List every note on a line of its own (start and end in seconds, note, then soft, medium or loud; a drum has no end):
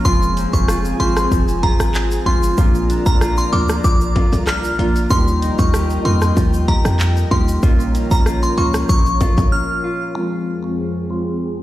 0.00 1.31 F3 medium
0.00 0.12 C#4 medium
0.00 10.12 F4 medium
0.05 0.46 F1 loud
0.05 2.58 F2 medium
0.05 0.49 F3 loud
0.05 0.50 G#3 medium
0.05 2.55 C4 medium
0.05 0.50 C4 medium
0.05 0.50 F4 loud
0.05 0.68 F4 medium
0.05 2.55 G#4 medium
0.05 2.55 G#5 medium
0.05 0.31 C6 loud
0.05 kick loud
0.05 shaker medium
0.22 shaker medium
0.37 0.99 C4 medium
0.37 closed hi-hat medium
0.37 shaker medium
0.37 shaker soft
0.53 0.93 F1 loud
0.53 0.70 F3 medium
0.53 0.70 G#3 medium
0.53 0.70 C4 medium
0.53 0.70 F4 medium
0.53 0.79 C#6 medium
0.53 kick medium
0.53 shaker medium
0.68 1.63 F4 medium
0.68 cross-stick medium
0.68 shaker medium
0.85 shaker medium
1.00 1.27 G#1 loud
1.00 1.18 F3 medium
1.00 1.18 G#3 medium
1.00 1.94 C4 medium
1.00 1.18 C4 medium
1.00 1.18 F4 medium
1.00 1.26 C6 medium
1.00 closed hi-hat medium
1.00 shaker soft
1.16 cross-stick medium
1.16 shaker medium
1.32 1.73 F1 loud
1.32 3.84 F3 medium
1.32 kick medium
1.32 shaker medium
1.48 shaker soft
1.63 2.26 F4 medium
1.63 1.77 A#5 medium
1.63 kick loud
1.63 closed hi-hat medium
1.63 shaker soft
1.80 2.19 G#1 medium
1.80 cross-stick loud
1.80 shaker medium
1.94 2.65 C4 medium
1.94 clap medium
1.94 shaker medium
2.11 shaker medium
2.26 2.53 G1 medium
2.26 2.55 F3 medium
2.26 2.55 G#3 medium
2.26 2.56 C4 medium
2.26 2.58 F4 medium
2.26 2.56 F4 medium
2.26 2.40 C6 medium
2.26 kick loud
2.26 closed hi-hat medium
2.26 shaker medium
2.43 shaker medium
2.57 2.99 A#1 loud
2.57 5.10 A#2 medium
2.57 3.02 F3 medium
2.57 3.02 A#3 medium
2.57 3.02 D4 medium
2.57 3.02 F4 loud
2.57 3.21 F4 medium
2.57 10.12 A#4 medium
2.57 5.08 D5 medium
2.57 5.08 A#5 medium
2.57 kick loud
2.57 shaker medium
2.75 shaker medium
2.90 3.51 D4 medium
2.90 closed hi-hat medium
2.90 shaker medium
3.06 3.46 A#1 loud
3.06 3.23 F3 medium
3.06 3.23 A#3 medium
3.06 3.23 D4 medium
3.06 3.23 F4 medium
3.06 3.18 A#5 medium
3.06 kick medium
3.06 shaker medium
3.21 4.15 F4 medium
3.21 cross-stick loud
3.21 shaker medium
3.37 3.50 C6 medium
3.37 shaker medium
3.52 3.80 D2 loud
3.52 3.71 F3 medium
3.52 3.71 A#3 medium
3.52 4.46 D4 medium
3.52 3.71 D4 medium
3.52 3.71 F4 medium
3.52 3.66 D6 medium
3.52 closed hi-hat medium
3.52 shaker soft
3.69 cross-stick loud
3.69 shaker medium
3.84 4.25 A#1 loud
3.84 5.45 F3 medium
3.84 4.30 D6 medium
3.84 kick medium
3.84 shaker medium
4.01 shaker soft
4.16 4.79 F4 medium
4.16 kick loud
4.16 closed hi-hat medium
4.16 high timbale medium
4.16 shaker soft
4.33 4.72 C2 loud
4.33 high timbale medium
4.33 shaker medium
4.47 5.17 D4 medium
4.47 4.93 F6 medium
4.47 cross-stick medium
4.47 clap loud
4.47 shaker medium
4.64 shaker medium
4.79 5.06 A#1 medium
4.79 5.08 F3 medium
4.79 5.08 A#3 medium
4.79 5.08 D4 medium
4.79 5.11 F4 medium
4.79 5.08 F4 medium
4.79 closed hi-hat medium
4.79 shaker medium
4.96 shaker medium
5.10 5.52 D#2 loud
5.10 7.63 D#3 medium
5.10 5.55 G3 medium
5.10 5.55 A#3 medium
5.10 5.55 D#4 medium
5.10 5.55 F4 loud
5.10 5.73 G4 medium
5.10 7.61 D#5 medium
5.10 7.61 G5 loud
5.10 5.36 C6 loud
5.10 kick loud
5.10 shaker medium
5.27 shaker medium
5.42 6.04 D#4 medium
5.42 closed hi-hat medium
5.42 shaker medium
5.59 5.98 D#2 medium
5.59 5.75 G3 medium
5.59 5.75 A#3 medium
5.59 5.75 D#4 medium
5.59 5.76 F4 medium
5.59 5.85 C#6 medium
5.59 kick medium
5.59 shaker medium
5.74 6.67 G4 medium
5.74 cross-stick loud
5.74 shaker medium
5.90 shaker medium
6.05 6.32 F2 loud
6.05 6.23 G3 medium
6.05 6.23 A#3 medium
6.05 6.99 D#4 medium
6.05 6.24 D#4 medium
6.05 6.24 F4 medium
6.05 6.31 C6 medium
6.05 closed hi-hat medium
6.05 shaker soft
6.21 cross-stick medium
6.21 shaker medium
6.37 6.78 D#2 loud
6.37 8.89 F3 medium
6.37 kick medium
6.37 shaker medium
6.53 shaker soft
6.68 7.30 G4 medium
6.68 6.82 A#5 medium
6.68 kick loud
6.68 closed hi-hat medium
6.68 shaker soft
6.85 7.25 F2 loud
6.85 cross-stick loud
6.85 shaker medium
7.00 7.70 D#4 medium
7.00 clap medium
7.00 shaker medium
7.17 shaker medium
7.31 7.58 D#2 loud
7.31 7.60 G3 medium
7.31 7.61 A#3 medium
7.31 7.61 D#4 medium
7.31 7.61 F4 medium
7.31 7.63 G4 medium
7.31 7.45 C6 medium
7.31 kick loud
7.31 closed hi-hat medium
7.31 shaker medium
7.48 shaker medium
7.63 8.04 A#1 loud
7.63 10.16 A#2 medium
7.63 8.07 F3 medium
7.63 8.07 A#3 medium
7.63 8.07 C#4 medium
7.63 8.07 F4 loud
7.63 8.26 F4 medium
7.63 10.13 C#5 medium
7.63 10.13 A#5 medium
7.63 kick loud
7.63 shaker medium
7.80 shaker medium
7.95 8.57 C#4 medium
7.95 closed hi-hat medium
7.95 shaker medium
7.95 shaker soft
8.11 8.51 A#1 loud
8.11 8.28 F3 medium
8.11 8.28 A#3 medium
8.11 8.28 C#4 medium
8.11 8.28 F4 medium
8.11 8.23 A#5 medium
8.11 kick medium
8.11 shaker medium
8.26 9.20 F4 medium
8.26 cross-stick loud
8.26 shaker medium
8.43 8.55 C6 medium
8.43 shaker medium
8.57 8.85 C#2 loud
8.57 8.76 F3 medium
8.57 8.76 A#3 medium
8.57 9.51 C#4 medium
8.57 8.76 C#4 medium
8.57 8.76 F4 medium
8.57 8.72 C#6 medium
8.57 closed hi-hat medium
8.57 shaker medium
8.74 cross-stick loud
8.74 shaker medium
8.89 9.31 A#1 loud
8.89 10.72 F3 medium
8.89 9.35 C#6 loud
8.89 kick medium
8.89 shaker medium
9.06 shaker soft
9.06 shaker medium
9.21 9.84 F4 medium
9.21 kick loud
9.21 closed hi-hat medium
9.21 high timbale medium
9.21 shaker soft
9.21 shaker medium
9.37 9.50 C2 loud
9.37 kick loud
9.37 high timbale medium
9.37 shaker medium
9.52 10.22 C#4 medium
9.52 9.98 F6 medium
9.84 10.72 F4 medium
10.15 11.63 F2 medium
10.15 10.60 F3 medium
10.15 11.63 F3 medium
10.15 10.60 G#3 medium
10.15 11.63 C4 medium
10.15 10.60 C4 medium
10.15 10.60 F4 loud
10.15 11.63 G#4 medium
10.15 10.41 C6 medium
10.64 10.80 F3 medium
10.64 10.81 G#3 medium
10.64 10.81 C4 medium
10.64 10.81 F4 medium
10.64 10.90 C#6 medium
11.10 11.29 F3 medium
11.10 11.29 G#3 medium
11.10 11.29 C4 medium
11.10 11.29 F4 medium
11.10 11.36 C6 medium